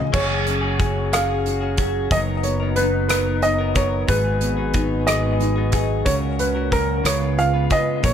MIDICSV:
0, 0, Header, 1, 7, 480
1, 0, Start_track
1, 0, Key_signature, 6, "major"
1, 0, Tempo, 658906
1, 100, Time_signature, 6, 3, 24, 8
1, 5926, End_track
2, 0, Start_track
2, 0, Title_t, "Grand piano"
2, 0, Program_c, 0, 0
2, 0, Note_on_c, 0, 75, 68
2, 101, Note_on_c, 0, 73, 81
2, 105, Note_off_c, 0, 75, 0
2, 826, Note_on_c, 0, 77, 76
2, 842, Note_off_c, 0, 73, 0
2, 1543, Note_on_c, 0, 75, 80
2, 1564, Note_off_c, 0, 77, 0
2, 1597, Note_off_c, 0, 75, 0
2, 1773, Note_on_c, 0, 73, 70
2, 2009, Note_on_c, 0, 71, 74
2, 2024, Note_off_c, 0, 73, 0
2, 2237, Note_off_c, 0, 71, 0
2, 2248, Note_on_c, 0, 71, 74
2, 2496, Note_on_c, 0, 75, 81
2, 2501, Note_off_c, 0, 71, 0
2, 2739, Note_on_c, 0, 73, 73
2, 2745, Note_off_c, 0, 75, 0
2, 2963, Note_off_c, 0, 73, 0
2, 2975, Note_on_c, 0, 71, 74
2, 3691, Note_on_c, 0, 75, 79
2, 3719, Note_off_c, 0, 71, 0
2, 4386, Note_off_c, 0, 75, 0
2, 4411, Note_on_c, 0, 73, 84
2, 4466, Note_off_c, 0, 73, 0
2, 4658, Note_on_c, 0, 71, 69
2, 4899, Note_on_c, 0, 70, 80
2, 4906, Note_off_c, 0, 71, 0
2, 5140, Note_on_c, 0, 73, 77
2, 5146, Note_off_c, 0, 70, 0
2, 5380, Note_on_c, 0, 77, 87
2, 5387, Note_off_c, 0, 73, 0
2, 5625, Note_on_c, 0, 75, 78
2, 5627, Note_off_c, 0, 77, 0
2, 5861, Note_on_c, 0, 73, 87
2, 5869, Note_off_c, 0, 75, 0
2, 5926, Note_off_c, 0, 73, 0
2, 5926, End_track
3, 0, Start_track
3, 0, Title_t, "Clean electric guitar"
3, 0, Program_c, 1, 27
3, 92, Note_on_c, 1, 54, 60
3, 97, Note_on_c, 1, 61, 72
3, 99, Note_on_c, 1, 66, 70
3, 104, Note_on_c, 1, 68, 69
3, 205, Note_off_c, 1, 68, 0
3, 212, Note_off_c, 1, 66, 0
3, 214, Note_on_c, 1, 68, 40
3, 216, Note_off_c, 1, 54, 0
3, 218, Note_off_c, 1, 61, 0
3, 221, Note_on_c, 1, 66, 41
3, 229, Note_on_c, 1, 61, 38
3, 438, Note_off_c, 1, 68, 0
3, 447, Note_off_c, 1, 66, 0
3, 447, Note_on_c, 1, 68, 44
3, 455, Note_on_c, 1, 66, 41
3, 457, Note_off_c, 1, 61, 0
3, 466, Note_on_c, 1, 61, 39
3, 567, Note_off_c, 1, 61, 0
3, 571, Note_on_c, 1, 54, 52
3, 572, Note_off_c, 1, 66, 0
3, 573, Note_off_c, 1, 68, 0
3, 576, Note_on_c, 1, 61, 47
3, 581, Note_on_c, 1, 66, 50
3, 588, Note_on_c, 1, 68, 51
3, 808, Note_off_c, 1, 54, 0
3, 813, Note_off_c, 1, 61, 0
3, 816, Note_off_c, 1, 66, 0
3, 817, Note_off_c, 1, 68, 0
3, 817, Note_on_c, 1, 54, 57
3, 821, Note_on_c, 1, 61, 68
3, 824, Note_on_c, 1, 66, 68
3, 826, Note_on_c, 1, 68, 67
3, 924, Note_off_c, 1, 68, 0
3, 933, Note_on_c, 1, 68, 48
3, 934, Note_off_c, 1, 66, 0
3, 938, Note_off_c, 1, 54, 0
3, 941, Note_off_c, 1, 61, 0
3, 942, Note_on_c, 1, 66, 44
3, 950, Note_on_c, 1, 61, 40
3, 1161, Note_off_c, 1, 68, 0
3, 1169, Note_off_c, 1, 66, 0
3, 1170, Note_on_c, 1, 68, 45
3, 1178, Note_off_c, 1, 61, 0
3, 1178, Note_on_c, 1, 66, 44
3, 1187, Note_on_c, 1, 61, 37
3, 1290, Note_off_c, 1, 61, 0
3, 1292, Note_on_c, 1, 54, 54
3, 1294, Note_off_c, 1, 66, 0
3, 1295, Note_off_c, 1, 68, 0
3, 1299, Note_on_c, 1, 61, 60
3, 1302, Note_on_c, 1, 66, 54
3, 1309, Note_on_c, 1, 68, 62
3, 1526, Note_off_c, 1, 54, 0
3, 1535, Note_on_c, 1, 54, 59
3, 1536, Note_off_c, 1, 61, 0
3, 1539, Note_on_c, 1, 59, 71
3, 1540, Note_off_c, 1, 66, 0
3, 1543, Note_off_c, 1, 68, 0
3, 1543, Note_on_c, 1, 63, 66
3, 1546, Note_on_c, 1, 70, 68
3, 1646, Note_off_c, 1, 70, 0
3, 1655, Note_on_c, 1, 70, 44
3, 1656, Note_off_c, 1, 63, 0
3, 1657, Note_off_c, 1, 54, 0
3, 1659, Note_off_c, 1, 59, 0
3, 1665, Note_on_c, 1, 63, 46
3, 1673, Note_on_c, 1, 59, 41
3, 1884, Note_off_c, 1, 70, 0
3, 1893, Note_on_c, 1, 70, 46
3, 1894, Note_off_c, 1, 63, 0
3, 1903, Note_on_c, 1, 63, 37
3, 1904, Note_off_c, 1, 59, 0
3, 1913, Note_on_c, 1, 59, 39
3, 2013, Note_off_c, 1, 59, 0
3, 2014, Note_on_c, 1, 54, 45
3, 2016, Note_off_c, 1, 70, 0
3, 2019, Note_off_c, 1, 63, 0
3, 2021, Note_on_c, 1, 59, 50
3, 2028, Note_on_c, 1, 63, 49
3, 2246, Note_off_c, 1, 54, 0
3, 2250, Note_off_c, 1, 59, 0
3, 2253, Note_off_c, 1, 63, 0
3, 2254, Note_on_c, 1, 54, 63
3, 2258, Note_on_c, 1, 59, 67
3, 2262, Note_on_c, 1, 63, 73
3, 2266, Note_on_c, 1, 70, 72
3, 2364, Note_off_c, 1, 70, 0
3, 2373, Note_off_c, 1, 63, 0
3, 2373, Note_on_c, 1, 70, 47
3, 2377, Note_off_c, 1, 54, 0
3, 2379, Note_off_c, 1, 59, 0
3, 2382, Note_on_c, 1, 63, 43
3, 2390, Note_on_c, 1, 59, 36
3, 2602, Note_off_c, 1, 70, 0
3, 2611, Note_on_c, 1, 70, 50
3, 2612, Note_off_c, 1, 63, 0
3, 2618, Note_off_c, 1, 59, 0
3, 2621, Note_on_c, 1, 63, 45
3, 2627, Note_on_c, 1, 59, 39
3, 2726, Note_off_c, 1, 59, 0
3, 2728, Note_on_c, 1, 54, 59
3, 2733, Note_off_c, 1, 63, 0
3, 2735, Note_off_c, 1, 70, 0
3, 2735, Note_on_c, 1, 59, 63
3, 2742, Note_on_c, 1, 63, 55
3, 2746, Note_on_c, 1, 70, 61
3, 2965, Note_off_c, 1, 54, 0
3, 2967, Note_off_c, 1, 59, 0
3, 2969, Note_off_c, 1, 63, 0
3, 2969, Note_on_c, 1, 44, 65
3, 2970, Note_on_c, 1, 51, 63
3, 2974, Note_on_c, 1, 54, 70
3, 2976, Note_on_c, 1, 59, 69
3, 2977, Note_off_c, 1, 70, 0
3, 2978, Note_on_c, 1, 63, 74
3, 2980, Note_on_c, 1, 68, 69
3, 3082, Note_off_c, 1, 68, 0
3, 3089, Note_off_c, 1, 63, 0
3, 3091, Note_on_c, 1, 68, 48
3, 3094, Note_off_c, 1, 44, 0
3, 3095, Note_off_c, 1, 51, 0
3, 3097, Note_off_c, 1, 54, 0
3, 3097, Note_on_c, 1, 63, 44
3, 3098, Note_off_c, 1, 59, 0
3, 3106, Note_on_c, 1, 59, 43
3, 3110, Note_on_c, 1, 54, 40
3, 3318, Note_off_c, 1, 68, 0
3, 3326, Note_off_c, 1, 63, 0
3, 3327, Note_on_c, 1, 68, 54
3, 3331, Note_off_c, 1, 59, 0
3, 3335, Note_on_c, 1, 63, 46
3, 3337, Note_off_c, 1, 54, 0
3, 3340, Note_on_c, 1, 59, 43
3, 3346, Note_on_c, 1, 54, 44
3, 3441, Note_off_c, 1, 54, 0
3, 3448, Note_off_c, 1, 59, 0
3, 3450, Note_on_c, 1, 54, 52
3, 3453, Note_off_c, 1, 68, 0
3, 3454, Note_off_c, 1, 63, 0
3, 3457, Note_on_c, 1, 59, 54
3, 3463, Note_on_c, 1, 63, 60
3, 3468, Note_on_c, 1, 68, 59
3, 3686, Note_off_c, 1, 54, 0
3, 3689, Note_off_c, 1, 59, 0
3, 3689, Note_on_c, 1, 44, 69
3, 3690, Note_off_c, 1, 63, 0
3, 3692, Note_on_c, 1, 51, 78
3, 3693, Note_off_c, 1, 68, 0
3, 3695, Note_on_c, 1, 54, 78
3, 3697, Note_on_c, 1, 59, 67
3, 3699, Note_on_c, 1, 63, 66
3, 3702, Note_on_c, 1, 68, 85
3, 3802, Note_off_c, 1, 68, 0
3, 3810, Note_off_c, 1, 63, 0
3, 3811, Note_on_c, 1, 68, 47
3, 3814, Note_off_c, 1, 44, 0
3, 3814, Note_off_c, 1, 59, 0
3, 3816, Note_off_c, 1, 51, 0
3, 3817, Note_off_c, 1, 54, 0
3, 3819, Note_on_c, 1, 63, 44
3, 3823, Note_on_c, 1, 59, 49
3, 3830, Note_on_c, 1, 54, 44
3, 4040, Note_off_c, 1, 68, 0
3, 4048, Note_off_c, 1, 63, 0
3, 4048, Note_on_c, 1, 68, 51
3, 4054, Note_off_c, 1, 59, 0
3, 4056, Note_off_c, 1, 54, 0
3, 4056, Note_on_c, 1, 63, 49
3, 4063, Note_on_c, 1, 59, 45
3, 4065, Note_on_c, 1, 54, 35
3, 4157, Note_off_c, 1, 54, 0
3, 4162, Note_off_c, 1, 59, 0
3, 4165, Note_on_c, 1, 54, 58
3, 4169, Note_off_c, 1, 63, 0
3, 4170, Note_on_c, 1, 59, 55
3, 4174, Note_off_c, 1, 68, 0
3, 4178, Note_on_c, 1, 63, 62
3, 4183, Note_on_c, 1, 68, 63
3, 4408, Note_off_c, 1, 54, 0
3, 4413, Note_on_c, 1, 49, 66
3, 4415, Note_off_c, 1, 59, 0
3, 4417, Note_on_c, 1, 54, 67
3, 4418, Note_on_c, 1, 61, 68
3, 4419, Note_off_c, 1, 63, 0
3, 4421, Note_off_c, 1, 68, 0
3, 4422, Note_on_c, 1, 66, 64
3, 4424, Note_on_c, 1, 70, 70
3, 4524, Note_off_c, 1, 70, 0
3, 4533, Note_on_c, 1, 70, 51
3, 4536, Note_off_c, 1, 49, 0
3, 4536, Note_off_c, 1, 66, 0
3, 4538, Note_off_c, 1, 54, 0
3, 4539, Note_off_c, 1, 61, 0
3, 4545, Note_on_c, 1, 66, 46
3, 4553, Note_on_c, 1, 61, 38
3, 4760, Note_off_c, 1, 70, 0
3, 4768, Note_on_c, 1, 70, 44
3, 4769, Note_off_c, 1, 66, 0
3, 4775, Note_off_c, 1, 61, 0
3, 4778, Note_on_c, 1, 66, 45
3, 4783, Note_on_c, 1, 61, 41
3, 4885, Note_off_c, 1, 61, 0
3, 4888, Note_on_c, 1, 54, 51
3, 4891, Note_off_c, 1, 66, 0
3, 4894, Note_off_c, 1, 70, 0
3, 4894, Note_on_c, 1, 61, 49
3, 4900, Note_on_c, 1, 66, 56
3, 4905, Note_on_c, 1, 70, 56
3, 5125, Note_on_c, 1, 49, 72
3, 5128, Note_off_c, 1, 54, 0
3, 5130, Note_off_c, 1, 61, 0
3, 5131, Note_on_c, 1, 56, 67
3, 5133, Note_on_c, 1, 59, 68
3, 5134, Note_off_c, 1, 66, 0
3, 5134, Note_off_c, 1, 70, 0
3, 5137, Note_on_c, 1, 65, 67
3, 5137, Note_on_c, 1, 71, 73
3, 5239, Note_off_c, 1, 71, 0
3, 5248, Note_on_c, 1, 71, 48
3, 5251, Note_off_c, 1, 65, 0
3, 5252, Note_off_c, 1, 49, 0
3, 5255, Note_off_c, 1, 56, 0
3, 5256, Note_off_c, 1, 59, 0
3, 5260, Note_on_c, 1, 65, 46
3, 5266, Note_on_c, 1, 59, 42
3, 5481, Note_off_c, 1, 71, 0
3, 5490, Note_on_c, 1, 71, 51
3, 5492, Note_off_c, 1, 65, 0
3, 5497, Note_off_c, 1, 59, 0
3, 5500, Note_on_c, 1, 65, 42
3, 5506, Note_on_c, 1, 59, 42
3, 5605, Note_off_c, 1, 59, 0
3, 5609, Note_on_c, 1, 56, 56
3, 5613, Note_off_c, 1, 65, 0
3, 5613, Note_on_c, 1, 59, 64
3, 5615, Note_off_c, 1, 71, 0
3, 5622, Note_on_c, 1, 65, 60
3, 5624, Note_on_c, 1, 71, 56
3, 5845, Note_off_c, 1, 56, 0
3, 5849, Note_on_c, 1, 46, 66
3, 5852, Note_off_c, 1, 65, 0
3, 5852, Note_on_c, 1, 51, 62
3, 5853, Note_on_c, 1, 56, 63
3, 5856, Note_off_c, 1, 59, 0
3, 5859, Note_off_c, 1, 71, 0
3, 5859, Note_on_c, 1, 63, 71
3, 5860, Note_on_c, 1, 65, 77
3, 5861, Note_on_c, 1, 70, 79
3, 5926, Note_off_c, 1, 46, 0
3, 5926, Note_off_c, 1, 51, 0
3, 5926, Note_off_c, 1, 56, 0
3, 5926, Note_off_c, 1, 63, 0
3, 5926, Note_off_c, 1, 65, 0
3, 5926, Note_off_c, 1, 70, 0
3, 5926, End_track
4, 0, Start_track
4, 0, Title_t, "Steel-string acoustic guitar"
4, 0, Program_c, 2, 25
4, 0, Note_on_c, 2, 49, 62
4, 0, Note_on_c, 2, 65, 46
4, 0, Note_on_c, 2, 68, 48
4, 93, Note_off_c, 2, 68, 0
4, 149, Note_off_c, 2, 49, 0
4, 152, Note_off_c, 2, 65, 0
4, 346, Note_on_c, 2, 61, 49
4, 1069, Note_on_c, 2, 66, 49
4, 1591, Note_off_c, 2, 61, 0
4, 1786, Note_on_c, 2, 59, 47
4, 2032, Note_off_c, 2, 66, 0
4, 2493, Note_on_c, 2, 63, 57
4, 3024, Note_off_c, 2, 63, 0
4, 3031, Note_off_c, 2, 59, 0
4, 3209, Note_on_c, 2, 59, 49
4, 3931, Note_on_c, 2, 63, 57
4, 4462, Note_off_c, 2, 59, 0
4, 4463, Note_off_c, 2, 63, 0
4, 4657, Note_on_c, 2, 61, 51
4, 5186, Note_off_c, 2, 61, 0
4, 5375, Note_on_c, 2, 65, 54
4, 5905, Note_off_c, 2, 65, 0
4, 5926, End_track
5, 0, Start_track
5, 0, Title_t, "French horn section"
5, 0, Program_c, 3, 60
5, 80, Note_on_c, 3, 68, 64
5, 85, Note_on_c, 3, 61, 57
5, 89, Note_on_c, 3, 54, 64
5, 1515, Note_off_c, 3, 68, 0
5, 1518, Note_off_c, 3, 61, 0
5, 1520, Note_off_c, 3, 54, 0
5, 1538, Note_on_c, 3, 59, 61
5, 1539, Note_on_c, 3, 54, 60
5, 1544, Note_on_c, 3, 63, 66
5, 2965, Note_off_c, 3, 54, 0
5, 2965, Note_off_c, 3, 59, 0
5, 2968, Note_off_c, 3, 63, 0
5, 2982, Note_on_c, 3, 56, 62
5, 2984, Note_on_c, 3, 66, 58
5, 2986, Note_on_c, 3, 71, 67
5, 4406, Note_off_c, 3, 56, 0
5, 4408, Note_off_c, 3, 71, 0
5, 4420, Note_on_c, 3, 61, 58
5, 4427, Note_on_c, 3, 46, 59
5, 5120, Note_off_c, 3, 66, 0
5, 5132, Note_off_c, 3, 61, 0
5, 5133, Note_on_c, 3, 65, 73
5, 5136, Note_off_c, 3, 46, 0
5, 5137, Note_on_c, 3, 49, 70
5, 5140, Note_on_c, 3, 59, 60
5, 5837, Note_on_c, 3, 56, 59
5, 5837, Note_on_c, 3, 58, 62
5, 5838, Note_on_c, 3, 63, 68
5, 5848, Note_off_c, 3, 65, 0
5, 5851, Note_off_c, 3, 49, 0
5, 5852, Note_off_c, 3, 59, 0
5, 5926, Note_off_c, 3, 56, 0
5, 5926, Note_off_c, 3, 58, 0
5, 5926, Note_off_c, 3, 63, 0
5, 5926, End_track
6, 0, Start_track
6, 0, Title_t, "Fingered electric bass"
6, 0, Program_c, 4, 33
6, 99, Note_on_c, 4, 30, 73
6, 1510, Note_off_c, 4, 30, 0
6, 1536, Note_on_c, 4, 30, 82
6, 2949, Note_off_c, 4, 30, 0
6, 2977, Note_on_c, 4, 32, 90
6, 4389, Note_off_c, 4, 32, 0
6, 4416, Note_on_c, 4, 37, 85
6, 5109, Note_off_c, 4, 37, 0
6, 5133, Note_on_c, 4, 37, 80
6, 5587, Note_off_c, 4, 37, 0
6, 5855, Note_on_c, 4, 34, 84
6, 5926, Note_off_c, 4, 34, 0
6, 5926, End_track
7, 0, Start_track
7, 0, Title_t, "Drums"
7, 100, Note_on_c, 9, 36, 88
7, 101, Note_on_c, 9, 49, 79
7, 173, Note_off_c, 9, 36, 0
7, 174, Note_off_c, 9, 49, 0
7, 339, Note_on_c, 9, 42, 40
7, 412, Note_off_c, 9, 42, 0
7, 580, Note_on_c, 9, 36, 76
7, 580, Note_on_c, 9, 42, 41
7, 653, Note_off_c, 9, 36, 0
7, 653, Note_off_c, 9, 42, 0
7, 823, Note_on_c, 9, 42, 80
7, 831, Note_on_c, 9, 37, 87
7, 896, Note_off_c, 9, 42, 0
7, 904, Note_off_c, 9, 37, 0
7, 1063, Note_on_c, 9, 42, 30
7, 1136, Note_off_c, 9, 42, 0
7, 1293, Note_on_c, 9, 42, 53
7, 1298, Note_on_c, 9, 36, 85
7, 1365, Note_off_c, 9, 42, 0
7, 1371, Note_off_c, 9, 36, 0
7, 1536, Note_on_c, 9, 42, 75
7, 1537, Note_on_c, 9, 36, 96
7, 1609, Note_off_c, 9, 42, 0
7, 1610, Note_off_c, 9, 36, 0
7, 1773, Note_on_c, 9, 42, 42
7, 1846, Note_off_c, 9, 42, 0
7, 2011, Note_on_c, 9, 42, 46
7, 2084, Note_off_c, 9, 42, 0
7, 2254, Note_on_c, 9, 42, 82
7, 2262, Note_on_c, 9, 37, 83
7, 2326, Note_off_c, 9, 42, 0
7, 2334, Note_off_c, 9, 37, 0
7, 2493, Note_on_c, 9, 42, 33
7, 2566, Note_off_c, 9, 42, 0
7, 2734, Note_on_c, 9, 42, 55
7, 2737, Note_on_c, 9, 36, 83
7, 2807, Note_off_c, 9, 42, 0
7, 2810, Note_off_c, 9, 36, 0
7, 2976, Note_on_c, 9, 36, 92
7, 2976, Note_on_c, 9, 42, 78
7, 3049, Note_off_c, 9, 36, 0
7, 3049, Note_off_c, 9, 42, 0
7, 3212, Note_on_c, 9, 42, 40
7, 3285, Note_off_c, 9, 42, 0
7, 3450, Note_on_c, 9, 42, 49
7, 3456, Note_on_c, 9, 36, 76
7, 3523, Note_off_c, 9, 42, 0
7, 3528, Note_off_c, 9, 36, 0
7, 3697, Note_on_c, 9, 42, 97
7, 3705, Note_on_c, 9, 37, 85
7, 3769, Note_off_c, 9, 42, 0
7, 3778, Note_off_c, 9, 37, 0
7, 3937, Note_on_c, 9, 42, 34
7, 4010, Note_off_c, 9, 42, 0
7, 4168, Note_on_c, 9, 42, 54
7, 4174, Note_on_c, 9, 36, 77
7, 4240, Note_off_c, 9, 42, 0
7, 4247, Note_off_c, 9, 36, 0
7, 4413, Note_on_c, 9, 42, 79
7, 4415, Note_on_c, 9, 36, 91
7, 4486, Note_off_c, 9, 42, 0
7, 4488, Note_off_c, 9, 36, 0
7, 4657, Note_on_c, 9, 42, 44
7, 4729, Note_off_c, 9, 42, 0
7, 4896, Note_on_c, 9, 36, 78
7, 4896, Note_on_c, 9, 42, 47
7, 4969, Note_off_c, 9, 36, 0
7, 4969, Note_off_c, 9, 42, 0
7, 5137, Note_on_c, 9, 42, 93
7, 5146, Note_on_c, 9, 37, 85
7, 5210, Note_off_c, 9, 42, 0
7, 5218, Note_off_c, 9, 37, 0
7, 5380, Note_on_c, 9, 42, 33
7, 5453, Note_off_c, 9, 42, 0
7, 5612, Note_on_c, 9, 42, 52
7, 5615, Note_on_c, 9, 36, 75
7, 5685, Note_off_c, 9, 42, 0
7, 5688, Note_off_c, 9, 36, 0
7, 5855, Note_on_c, 9, 36, 101
7, 5855, Note_on_c, 9, 42, 77
7, 5926, Note_off_c, 9, 36, 0
7, 5926, Note_off_c, 9, 42, 0
7, 5926, End_track
0, 0, End_of_file